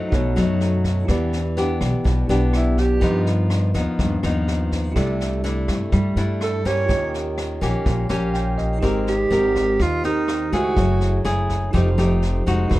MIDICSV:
0, 0, Header, 1, 6, 480
1, 0, Start_track
1, 0, Tempo, 484262
1, 1074, Time_signature, 4, 2, 24, 8
1, 12683, End_track
2, 0, Start_track
2, 0, Title_t, "Tine electric piano"
2, 0, Program_c, 0, 4
2, 0, Control_c, 0, 64, 127
2, 0, Note_on_c, 0, 64, 46
2, 0, Note_on_c, 0, 66, 45
2, 0, Note_on_c, 0, 69, 49
2, 0, Note_on_c, 0, 72, 54
2, 84, Note_on_c, 0, 63, 56
2, 102, Note_off_c, 0, 69, 0
2, 106, Note_off_c, 0, 66, 0
2, 106, Note_on_c, 0, 66, 58
2, 112, Note_off_c, 0, 72, 0
2, 127, Note_on_c, 0, 69, 52
2, 129, Control_c, 0, 64, 0
2, 131, Note_off_c, 0, 64, 0
2, 146, Note_on_c, 0, 73, 66
2, 303, Control_c, 0, 64, 127
2, 1039, Note_off_c, 0, 63, 0
2, 1042, Note_on_c, 0, 64, 58
2, 1050, Note_off_c, 0, 66, 0
2, 1061, Note_off_c, 0, 69, 0
2, 1062, Note_on_c, 0, 67, 48
2, 1070, Note_off_c, 0, 73, 0
2, 1081, Note_on_c, 0, 71, 46
2, 1086, Control_c, 0, 64, 0
2, 1102, Note_on_c, 0, 74, 59
2, 1270, Control_c, 0, 64, 127
2, 2233, Note_off_c, 0, 64, 0
2, 2243, Note_off_c, 0, 67, 0
2, 2247, Note_on_c, 0, 64, 42
2, 2252, Note_off_c, 0, 71, 0
2, 2260, Note_on_c, 0, 67, 37
2, 2263, Note_off_c, 0, 74, 0
2, 2271, Note_on_c, 0, 71, 33
2, 2279, Note_on_c, 0, 74, 43
2, 2951, Note_on_c, 0, 65, 44
2, 2973, Note_on_c, 0, 70, 46
2, 2979, Note_off_c, 0, 64, 0
2, 2980, Note_off_c, 0, 71, 0
2, 2985, Note_off_c, 0, 67, 0
2, 2992, Note_on_c, 0, 71, 46
2, 2995, Note_off_c, 0, 74, 0
2, 3006, Control_c, 0, 64, 0
2, 3013, Note_on_c, 0, 75, 50
2, 3170, Control_c, 0, 64, 127
2, 4852, Note_off_c, 0, 65, 0
2, 4863, Note_off_c, 0, 70, 0
2, 4872, Note_off_c, 0, 71, 0
2, 4875, Note_on_c, 0, 64, 62
2, 4883, Note_off_c, 0, 75, 0
2, 4898, Note_on_c, 0, 67, 52
2, 4917, Note_on_c, 0, 69, 53
2, 4925, Control_c, 0, 64, 0
2, 4938, Note_on_c, 0, 74, 65
2, 5125, Control_c, 0, 64, 127
2, 6774, Note_off_c, 0, 64, 0
2, 6785, Note_off_c, 0, 67, 0
2, 6794, Note_on_c, 0, 65, 49
2, 6795, Note_off_c, 0, 69, 0
2, 6806, Note_off_c, 0, 74, 0
2, 6816, Note_on_c, 0, 67, 47
2, 6838, Note_on_c, 0, 70, 47
2, 6842, Control_c, 0, 64, 0
2, 6856, Note_on_c, 0, 73, 52
2, 7009, Control_c, 0, 64, 127
2, 8264, Note_on_c, 0, 79, 59
2, 8491, Note_off_c, 0, 79, 0
2, 8503, Note_on_c, 0, 75, 59
2, 8694, Note_off_c, 0, 65, 0
2, 8705, Note_off_c, 0, 67, 0
2, 8708, Note_on_c, 0, 63, 61
2, 8716, Note_off_c, 0, 70, 0
2, 8725, Note_off_c, 0, 73, 0
2, 8727, Note_on_c, 0, 67, 57
2, 8730, Note_off_c, 0, 75, 0
2, 8747, Note_on_c, 0, 70, 47
2, 8763, Control_c, 0, 64, 0
2, 8770, Note_on_c, 0, 72, 58
2, 8956, Control_c, 0, 64, 127
2, 10377, Note_off_c, 0, 63, 0
2, 10387, Note_off_c, 0, 67, 0
2, 10396, Note_off_c, 0, 70, 0
2, 10408, Note_off_c, 0, 72, 0
2, 10416, Note_on_c, 0, 63, 38
2, 10426, Note_on_c, 0, 67, 34
2, 10434, Note_on_c, 0, 70, 33
2, 10446, Note_on_c, 0, 72, 41
2, 10637, Note_on_c, 0, 64, 48
2, 10656, Note_on_c, 0, 68, 42
2, 10664, Note_off_c, 0, 63, 0
2, 10669, Note_off_c, 0, 67, 0
2, 10674, Note_off_c, 0, 70, 0
2, 10679, Note_off_c, 0, 72, 0
2, 10684, Control_c, 0, 64, 0
2, 10696, Note_on_c, 0, 73, 50
2, 10877, Control_c, 0, 64, 127
2, 11596, Note_off_c, 0, 64, 0
2, 11606, Note_off_c, 0, 68, 0
2, 11606, Note_on_c, 0, 63, 53
2, 11624, Note_on_c, 0, 67, 58
2, 11627, Note_off_c, 0, 73, 0
2, 11645, Note_on_c, 0, 69, 58
2, 11647, Control_c, 0, 64, 0
2, 11669, Note_on_c, 0, 72, 67
2, 11835, Control_c, 0, 64, 127
2, 12554, Note_off_c, 0, 63, 0
2, 12566, Note_on_c, 0, 63, 64
2, 12571, Note_off_c, 0, 67, 0
2, 12581, Note_off_c, 0, 69, 0
2, 12584, Note_on_c, 0, 66, 52
2, 12594, Note_off_c, 0, 72, 0
2, 12606, Control_c, 0, 64, 0
2, 12607, Note_on_c, 0, 68, 49
2, 12624, Note_on_c, 0, 71, 70
2, 12683, Note_off_c, 0, 63, 0
2, 12683, Note_off_c, 0, 66, 0
2, 12683, Note_off_c, 0, 68, 0
2, 12683, Note_off_c, 0, 71, 0
2, 12683, End_track
3, 0, Start_track
3, 0, Title_t, "Alto saxophone"
3, 0, Program_c, 1, 65
3, 2542, Note_on_c, 1, 64, 61
3, 2764, Note_on_c, 1, 67, 78
3, 2779, Note_off_c, 1, 64, 0
3, 3238, Note_off_c, 1, 67, 0
3, 6379, Note_on_c, 1, 69, 80
3, 6606, Note_on_c, 1, 73, 94
3, 6621, Note_off_c, 1, 69, 0
3, 7078, Note_off_c, 1, 73, 0
3, 9008, Note_on_c, 1, 67, 87
3, 9730, Note_on_c, 1, 65, 83
3, 9745, Note_off_c, 1, 67, 0
3, 9958, Note_off_c, 1, 65, 0
3, 9964, Note_on_c, 1, 63, 76
3, 10405, Note_off_c, 1, 63, 0
3, 10454, Note_on_c, 1, 66, 84
3, 11124, Note_off_c, 1, 66, 0
3, 12683, End_track
4, 0, Start_track
4, 0, Title_t, "Nylon-string guitar"
4, 0, Program_c, 2, 24
4, 0, Note_on_c, 2, 54, 54
4, 0, Note_on_c, 2, 57, 51
4, 0, Note_on_c, 2, 63, 61
4, 117, Note_on_c, 2, 47, 56
4, 320, Note_off_c, 2, 54, 0
4, 323, Note_off_c, 2, 57, 0
4, 323, Note_off_c, 2, 63, 0
4, 357, Note_on_c, 2, 54, 55
4, 364, Note_on_c, 2, 57, 55
4, 367, Note_on_c, 2, 63, 59
4, 1037, Note_off_c, 2, 54, 0
4, 1039, Note_off_c, 2, 57, 0
4, 1042, Note_off_c, 2, 63, 0
4, 1051, Note_off_c, 2, 47, 0
4, 1082, Note_on_c, 2, 52, 56
4, 1087, Note_on_c, 2, 59, 55
4, 1087, Note_on_c, 2, 62, 56
4, 1095, Note_on_c, 2, 67, 52
4, 1387, Note_off_c, 2, 59, 0
4, 1390, Note_off_c, 2, 62, 0
4, 1392, Note_off_c, 2, 67, 0
4, 1554, Note_on_c, 2, 59, 55
4, 1563, Note_on_c, 2, 62, 52
4, 1565, Note_on_c, 2, 67, 65
4, 2014, Note_off_c, 2, 52, 0
4, 2026, Note_on_c, 2, 47, 59
4, 2235, Note_off_c, 2, 59, 0
4, 2239, Note_off_c, 2, 62, 0
4, 2240, Note_off_c, 2, 67, 0
4, 2271, Note_on_c, 2, 59, 64
4, 2277, Note_on_c, 2, 62, 60
4, 2281, Note_on_c, 2, 67, 67
4, 2953, Note_off_c, 2, 59, 0
4, 2956, Note_off_c, 2, 62, 0
4, 2958, Note_off_c, 2, 67, 0
4, 2965, Note_off_c, 2, 47, 0
4, 2983, Note_on_c, 2, 43, 54
4, 2984, Note_on_c, 2, 53, 60
4, 2986, Note_on_c, 2, 59, 50
4, 2991, Note_on_c, 2, 63, 61
4, 3668, Note_off_c, 2, 53, 0
4, 3670, Note_off_c, 2, 59, 0
4, 3672, Note_off_c, 2, 63, 0
4, 3710, Note_on_c, 2, 53, 53
4, 3714, Note_on_c, 2, 59, 53
4, 3716, Note_on_c, 2, 63, 62
4, 3924, Note_off_c, 2, 43, 0
4, 3961, Note_on_c, 2, 43, 56
4, 4152, Note_off_c, 2, 53, 0
4, 4154, Note_off_c, 2, 59, 0
4, 4155, Note_off_c, 2, 63, 0
4, 4196, Note_on_c, 2, 53, 55
4, 4202, Note_on_c, 2, 59, 52
4, 4207, Note_on_c, 2, 63, 68
4, 4875, Note_off_c, 2, 53, 0
4, 4878, Note_off_c, 2, 59, 0
4, 4879, Note_off_c, 2, 63, 0
4, 4892, Note_off_c, 2, 43, 0
4, 4917, Note_on_c, 2, 48, 54
4, 4921, Note_on_c, 2, 57, 58
4, 4924, Note_on_c, 2, 62, 54
4, 4927, Note_on_c, 2, 64, 59
4, 5357, Note_off_c, 2, 57, 0
4, 5359, Note_off_c, 2, 62, 0
4, 5360, Note_off_c, 2, 64, 0
4, 5390, Note_on_c, 2, 57, 64
4, 5392, Note_on_c, 2, 62, 55
4, 5398, Note_on_c, 2, 64, 68
4, 5850, Note_off_c, 2, 48, 0
4, 5870, Note_on_c, 2, 55, 58
4, 6072, Note_off_c, 2, 57, 0
4, 6072, Note_off_c, 2, 62, 0
4, 6076, Note_off_c, 2, 64, 0
4, 6113, Note_on_c, 2, 57, 54
4, 6117, Note_on_c, 2, 62, 72
4, 6122, Note_on_c, 2, 64, 65
4, 6553, Note_off_c, 2, 57, 0
4, 6555, Note_off_c, 2, 62, 0
4, 6558, Note_off_c, 2, 64, 0
4, 6593, Note_on_c, 2, 58, 61
4, 6597, Note_on_c, 2, 61, 58
4, 6599, Note_on_c, 2, 67, 58
4, 6806, Note_off_c, 2, 55, 0
4, 6824, Note_on_c, 2, 51, 55
4, 7514, Note_off_c, 2, 58, 0
4, 7514, Note_off_c, 2, 61, 0
4, 7516, Note_off_c, 2, 67, 0
4, 7545, Note_on_c, 2, 58, 52
4, 7550, Note_on_c, 2, 61, 66
4, 7557, Note_on_c, 2, 67, 62
4, 7763, Note_off_c, 2, 51, 0
4, 7794, Note_on_c, 2, 46, 58
4, 7990, Note_off_c, 2, 58, 0
4, 7993, Note_off_c, 2, 61, 0
4, 7994, Note_off_c, 2, 67, 0
4, 8021, Note_on_c, 2, 58, 62
4, 8027, Note_on_c, 2, 61, 69
4, 8030, Note_on_c, 2, 67, 65
4, 8709, Note_off_c, 2, 58, 0
4, 8709, Note_off_c, 2, 67, 0
4, 8710, Note_off_c, 2, 61, 0
4, 8729, Note_off_c, 2, 46, 0
4, 8744, Note_on_c, 2, 56, 53
4, 8745, Note_on_c, 2, 60, 58
4, 8747, Note_on_c, 2, 67, 49
4, 8755, Note_on_c, 2, 70, 55
4, 9057, Note_off_c, 2, 60, 0
4, 9059, Note_off_c, 2, 67, 0
4, 9061, Note_off_c, 2, 70, 0
4, 9223, Note_on_c, 2, 60, 63
4, 9230, Note_on_c, 2, 67, 55
4, 9235, Note_on_c, 2, 70, 58
4, 9684, Note_off_c, 2, 56, 0
4, 9705, Note_off_c, 2, 60, 0
4, 9707, Note_off_c, 2, 67, 0
4, 9707, Note_on_c, 2, 51, 49
4, 9711, Note_off_c, 2, 70, 0
4, 9949, Note_on_c, 2, 60, 59
4, 9956, Note_on_c, 2, 67, 54
4, 9958, Note_on_c, 2, 70, 71
4, 10393, Note_off_c, 2, 60, 0
4, 10395, Note_off_c, 2, 67, 0
4, 10397, Note_off_c, 2, 70, 0
4, 10433, Note_on_c, 2, 57, 60
4, 10437, Note_on_c, 2, 64, 59
4, 10441, Note_on_c, 2, 68, 62
4, 10646, Note_off_c, 2, 51, 0
4, 10669, Note_on_c, 2, 54, 49
4, 11115, Note_off_c, 2, 64, 0
4, 11116, Note_off_c, 2, 57, 0
4, 11119, Note_off_c, 2, 68, 0
4, 11146, Note_on_c, 2, 64, 60
4, 11147, Note_on_c, 2, 57, 55
4, 11153, Note_on_c, 2, 68, 72
4, 11608, Note_off_c, 2, 54, 0
4, 11610, Note_off_c, 2, 64, 0
4, 11612, Note_off_c, 2, 57, 0
4, 11614, Note_off_c, 2, 68, 0
4, 11625, Note_on_c, 2, 57, 57
4, 11630, Note_on_c, 2, 53, 60
4, 11636, Note_on_c, 2, 63, 57
4, 11637, Note_on_c, 2, 67, 60
4, 11771, Note_off_c, 2, 57, 0
4, 11775, Note_off_c, 2, 63, 0
4, 11777, Note_off_c, 2, 67, 0
4, 11872, Note_on_c, 2, 57, 62
4, 11874, Note_on_c, 2, 63, 50
4, 11878, Note_on_c, 2, 67, 68
4, 12315, Note_off_c, 2, 63, 0
4, 12316, Note_off_c, 2, 57, 0
4, 12318, Note_off_c, 2, 67, 0
4, 12354, Note_on_c, 2, 56, 55
4, 12358, Note_on_c, 2, 63, 61
4, 12366, Note_on_c, 2, 66, 64
4, 12569, Note_off_c, 2, 53, 0
4, 12583, Note_on_c, 2, 52, 53
4, 12683, Note_off_c, 2, 52, 0
4, 12683, Note_off_c, 2, 56, 0
4, 12683, Note_off_c, 2, 63, 0
4, 12683, Note_off_c, 2, 66, 0
4, 12683, End_track
5, 0, Start_track
5, 0, Title_t, "Upright bass"
5, 0, Program_c, 3, 32
5, 124, Note_on_c, 3, 35, 96
5, 361, Note_on_c, 3, 42, 88
5, 375, Note_off_c, 3, 35, 0
5, 1037, Note_off_c, 3, 42, 0
5, 1080, Note_on_c, 3, 40, 90
5, 1757, Note_off_c, 3, 40, 0
5, 1794, Note_on_c, 3, 35, 90
5, 1905, Note_off_c, 3, 35, 0
5, 2037, Note_on_c, 3, 35, 92
5, 2258, Note_off_c, 3, 35, 0
5, 2271, Note_on_c, 3, 35, 91
5, 2952, Note_off_c, 3, 35, 0
5, 2994, Note_on_c, 3, 43, 94
5, 3673, Note_off_c, 3, 43, 0
5, 3712, Note_on_c, 3, 39, 89
5, 3823, Note_off_c, 3, 39, 0
5, 3958, Note_on_c, 3, 39, 97
5, 4178, Note_off_c, 3, 39, 0
5, 4196, Note_on_c, 3, 39, 92
5, 4873, Note_off_c, 3, 39, 0
5, 4919, Note_on_c, 3, 36, 92
5, 5595, Note_off_c, 3, 36, 0
5, 5633, Note_on_c, 3, 43, 95
5, 5743, Note_off_c, 3, 43, 0
5, 5874, Note_on_c, 3, 43, 98
5, 6096, Note_off_c, 3, 43, 0
5, 6106, Note_on_c, 3, 43, 78
5, 6788, Note_off_c, 3, 43, 0
5, 6832, Note_on_c, 3, 39, 81
5, 7512, Note_off_c, 3, 39, 0
5, 7553, Note_on_c, 3, 34, 92
5, 7663, Note_off_c, 3, 34, 0
5, 7792, Note_on_c, 3, 34, 97
5, 8015, Note_off_c, 3, 34, 0
5, 8026, Note_on_c, 3, 34, 93
5, 8709, Note_off_c, 3, 34, 0
5, 8748, Note_on_c, 3, 32, 80
5, 9196, Note_off_c, 3, 32, 0
5, 9225, Note_on_c, 3, 32, 88
5, 9675, Note_off_c, 3, 32, 0
5, 9713, Note_on_c, 3, 39, 87
5, 10393, Note_off_c, 3, 39, 0
5, 10435, Note_on_c, 3, 37, 74
5, 10657, Note_off_c, 3, 37, 0
5, 10673, Note_on_c, 3, 30, 91
5, 11119, Note_off_c, 3, 30, 0
5, 11153, Note_on_c, 3, 30, 76
5, 11600, Note_off_c, 3, 30, 0
5, 11638, Note_on_c, 3, 29, 97
5, 12317, Note_off_c, 3, 29, 0
5, 12360, Note_on_c, 3, 29, 81
5, 12581, Note_off_c, 3, 29, 0
5, 12598, Note_on_c, 3, 28, 85
5, 12683, Note_off_c, 3, 28, 0
5, 12683, End_track
6, 0, Start_track
6, 0, Title_t, "Drums"
6, 122, Note_on_c, 9, 36, 62
6, 123, Note_on_c, 9, 38, 22
6, 221, Note_off_c, 9, 36, 0
6, 222, Note_off_c, 9, 38, 0
6, 364, Note_on_c, 9, 37, 54
6, 364, Note_on_c, 9, 38, 20
6, 463, Note_off_c, 9, 37, 0
6, 463, Note_off_c, 9, 38, 0
6, 599, Note_on_c, 9, 38, 25
6, 698, Note_off_c, 9, 38, 0
6, 836, Note_on_c, 9, 38, 22
6, 837, Note_on_c, 9, 36, 23
6, 935, Note_off_c, 9, 38, 0
6, 936, Note_off_c, 9, 36, 0
6, 1073, Note_on_c, 9, 37, 54
6, 1073, Note_on_c, 9, 38, 25
6, 1076, Note_on_c, 9, 36, 59
6, 1172, Note_off_c, 9, 37, 0
6, 1172, Note_off_c, 9, 38, 0
6, 1175, Note_off_c, 9, 36, 0
6, 1314, Note_on_c, 9, 38, 22
6, 1413, Note_off_c, 9, 38, 0
6, 1557, Note_on_c, 9, 38, 26
6, 1656, Note_off_c, 9, 38, 0
6, 1792, Note_on_c, 9, 37, 57
6, 1792, Note_on_c, 9, 38, 23
6, 1794, Note_on_c, 9, 36, 22
6, 1891, Note_off_c, 9, 37, 0
6, 1891, Note_off_c, 9, 38, 0
6, 1893, Note_off_c, 9, 36, 0
6, 2035, Note_on_c, 9, 36, 67
6, 2037, Note_on_c, 9, 38, 24
6, 2134, Note_off_c, 9, 36, 0
6, 2136, Note_off_c, 9, 38, 0
6, 2277, Note_on_c, 9, 38, 20
6, 2376, Note_off_c, 9, 38, 0
6, 2511, Note_on_c, 9, 37, 64
6, 2511, Note_on_c, 9, 38, 23
6, 2610, Note_off_c, 9, 37, 0
6, 2610, Note_off_c, 9, 38, 0
6, 2752, Note_on_c, 9, 38, 23
6, 2753, Note_on_c, 9, 36, 23
6, 2851, Note_off_c, 9, 38, 0
6, 2853, Note_off_c, 9, 36, 0
6, 2988, Note_on_c, 9, 38, 26
6, 2993, Note_on_c, 9, 36, 53
6, 3087, Note_off_c, 9, 38, 0
6, 3092, Note_off_c, 9, 36, 0
6, 3233, Note_on_c, 9, 38, 21
6, 3332, Note_off_c, 9, 38, 0
6, 3470, Note_on_c, 9, 37, 59
6, 3470, Note_on_c, 9, 38, 23
6, 3569, Note_off_c, 9, 37, 0
6, 3569, Note_off_c, 9, 38, 0
6, 3709, Note_on_c, 9, 38, 25
6, 3713, Note_on_c, 9, 36, 25
6, 3808, Note_off_c, 9, 38, 0
6, 3812, Note_off_c, 9, 36, 0
6, 3954, Note_on_c, 9, 38, 25
6, 3955, Note_on_c, 9, 36, 59
6, 4053, Note_off_c, 9, 38, 0
6, 4054, Note_off_c, 9, 36, 0
6, 4194, Note_on_c, 9, 37, 53
6, 4194, Note_on_c, 9, 38, 22
6, 4293, Note_off_c, 9, 37, 0
6, 4293, Note_off_c, 9, 38, 0
6, 4438, Note_on_c, 9, 38, 28
6, 4537, Note_off_c, 9, 38, 0
6, 4675, Note_on_c, 9, 36, 23
6, 4678, Note_on_c, 9, 38, 23
6, 4775, Note_off_c, 9, 36, 0
6, 4777, Note_off_c, 9, 38, 0
6, 4914, Note_on_c, 9, 37, 60
6, 4914, Note_on_c, 9, 38, 23
6, 4915, Note_on_c, 9, 36, 57
6, 5013, Note_off_c, 9, 37, 0
6, 5013, Note_off_c, 9, 38, 0
6, 5014, Note_off_c, 9, 36, 0
6, 5158, Note_on_c, 9, 38, 22
6, 5258, Note_off_c, 9, 38, 0
6, 5398, Note_on_c, 9, 38, 24
6, 5497, Note_off_c, 9, 38, 0
6, 5632, Note_on_c, 9, 37, 62
6, 5632, Note_on_c, 9, 38, 24
6, 5634, Note_on_c, 9, 36, 25
6, 5731, Note_off_c, 9, 37, 0
6, 5731, Note_off_c, 9, 38, 0
6, 5733, Note_off_c, 9, 36, 0
6, 5870, Note_on_c, 9, 38, 25
6, 5873, Note_on_c, 9, 36, 63
6, 5969, Note_off_c, 9, 38, 0
6, 5972, Note_off_c, 9, 36, 0
6, 6113, Note_on_c, 9, 38, 21
6, 6212, Note_off_c, 9, 38, 0
6, 6353, Note_on_c, 9, 37, 61
6, 6353, Note_on_c, 9, 38, 25
6, 6452, Note_off_c, 9, 37, 0
6, 6452, Note_off_c, 9, 38, 0
6, 6592, Note_on_c, 9, 36, 21
6, 6597, Note_on_c, 9, 38, 23
6, 6692, Note_off_c, 9, 36, 0
6, 6696, Note_off_c, 9, 38, 0
6, 6831, Note_on_c, 9, 38, 25
6, 6832, Note_on_c, 9, 36, 60
6, 6930, Note_off_c, 9, 38, 0
6, 6931, Note_off_c, 9, 36, 0
6, 7077, Note_on_c, 9, 38, 20
6, 7176, Note_off_c, 9, 38, 0
6, 7312, Note_on_c, 9, 37, 64
6, 7312, Note_on_c, 9, 38, 27
6, 7411, Note_off_c, 9, 37, 0
6, 7411, Note_off_c, 9, 38, 0
6, 7551, Note_on_c, 9, 36, 23
6, 7552, Note_on_c, 9, 38, 24
6, 7650, Note_off_c, 9, 36, 0
6, 7651, Note_off_c, 9, 38, 0
6, 7789, Note_on_c, 9, 38, 22
6, 7790, Note_on_c, 9, 36, 61
6, 7888, Note_off_c, 9, 38, 0
6, 7889, Note_off_c, 9, 36, 0
6, 8026, Note_on_c, 9, 37, 57
6, 8026, Note_on_c, 9, 38, 19
6, 8125, Note_off_c, 9, 37, 0
6, 8125, Note_off_c, 9, 38, 0
6, 8270, Note_on_c, 9, 38, 25
6, 8370, Note_off_c, 9, 38, 0
6, 8508, Note_on_c, 9, 38, 21
6, 8509, Note_on_c, 9, 36, 23
6, 8607, Note_off_c, 9, 38, 0
6, 8608, Note_off_c, 9, 36, 0
6, 8748, Note_on_c, 9, 37, 59
6, 8748, Note_on_c, 9, 38, 25
6, 8749, Note_on_c, 9, 36, 58
6, 8848, Note_off_c, 9, 36, 0
6, 8848, Note_off_c, 9, 37, 0
6, 8848, Note_off_c, 9, 38, 0
6, 8990, Note_on_c, 9, 38, 21
6, 9089, Note_off_c, 9, 38, 0
6, 9232, Note_on_c, 9, 38, 25
6, 9331, Note_off_c, 9, 38, 0
6, 9471, Note_on_c, 9, 36, 25
6, 9472, Note_on_c, 9, 37, 52
6, 9472, Note_on_c, 9, 38, 23
6, 9570, Note_off_c, 9, 36, 0
6, 9571, Note_off_c, 9, 37, 0
6, 9571, Note_off_c, 9, 38, 0
6, 9709, Note_on_c, 9, 38, 26
6, 9710, Note_on_c, 9, 36, 58
6, 9808, Note_off_c, 9, 38, 0
6, 9809, Note_off_c, 9, 36, 0
6, 9951, Note_on_c, 9, 38, 19
6, 10050, Note_off_c, 9, 38, 0
6, 10191, Note_on_c, 9, 37, 65
6, 10191, Note_on_c, 9, 38, 25
6, 10290, Note_off_c, 9, 37, 0
6, 10290, Note_off_c, 9, 38, 0
6, 10432, Note_on_c, 9, 36, 21
6, 10432, Note_on_c, 9, 38, 20
6, 10531, Note_off_c, 9, 36, 0
6, 10532, Note_off_c, 9, 38, 0
6, 10671, Note_on_c, 9, 38, 25
6, 10672, Note_on_c, 9, 36, 61
6, 10770, Note_off_c, 9, 38, 0
6, 10771, Note_off_c, 9, 36, 0
6, 10908, Note_on_c, 9, 38, 22
6, 11008, Note_off_c, 9, 38, 0
6, 11149, Note_on_c, 9, 37, 59
6, 11149, Note_on_c, 9, 38, 23
6, 11248, Note_off_c, 9, 37, 0
6, 11248, Note_off_c, 9, 38, 0
6, 11393, Note_on_c, 9, 38, 24
6, 11394, Note_on_c, 9, 36, 25
6, 11492, Note_off_c, 9, 38, 0
6, 11493, Note_off_c, 9, 36, 0
6, 11635, Note_on_c, 9, 36, 54
6, 11637, Note_on_c, 9, 38, 25
6, 11734, Note_off_c, 9, 36, 0
6, 11736, Note_off_c, 9, 38, 0
6, 11877, Note_on_c, 9, 37, 45
6, 11877, Note_on_c, 9, 38, 20
6, 11976, Note_off_c, 9, 37, 0
6, 11976, Note_off_c, 9, 38, 0
6, 12115, Note_on_c, 9, 38, 27
6, 12214, Note_off_c, 9, 38, 0
6, 12356, Note_on_c, 9, 36, 24
6, 12356, Note_on_c, 9, 38, 21
6, 12455, Note_off_c, 9, 38, 0
6, 12456, Note_off_c, 9, 36, 0
6, 12597, Note_on_c, 9, 37, 57
6, 12597, Note_on_c, 9, 38, 24
6, 12598, Note_on_c, 9, 36, 64
6, 12683, Note_off_c, 9, 36, 0
6, 12683, Note_off_c, 9, 37, 0
6, 12683, Note_off_c, 9, 38, 0
6, 12683, End_track
0, 0, End_of_file